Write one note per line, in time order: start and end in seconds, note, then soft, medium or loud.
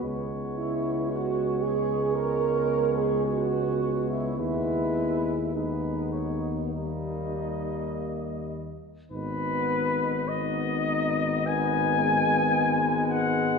0.02 4.40 C#2 medium
0.02 4.33 G#3 medium
0.02 4.34 B3 medium
0.02 4.34 C#5 medium
0.57 1.06 E4 medium
1.09 1.61 F#4 medium
1.61 2.14 G#4 medium
2.15 2.96 A#4 medium
2.96 3.24 G#4 medium
3.24 4.09 F#4 medium
4.09 4.37 E4 medium
4.36 8.78 D#2 medium
4.36 5.52 G#3 medium
4.36 5.37 B3 soft
4.36 5.53 E4 medium
4.36 5.36 B4 medium
5.53 6.40 G#3 soft
5.53 6.70 B3 soft
5.53 7.91 D#4 soft
5.53 6.11 B4 soft
6.12 6.50 C#5 soft
6.71 8.74 G3 soft
6.71 8.78 A#3 medium
6.71 8.74 D#5 medium
9.11 13.59 G#1 medium
9.11 10.24 B3 medium
9.11 10.24 D#4 medium
9.11 10.29 B4 medium
10.28 11.44 B3 medium
10.28 11.44 D#4 medium
10.28 11.48 D#5 medium
11.46 13.59 B3 medium
11.46 12.02 B3 medium
11.46 13.59 D#4 medium
11.46 13.09 G#5 loud
12.00 13.59 G#3 medium
13.10 13.59 F#5 medium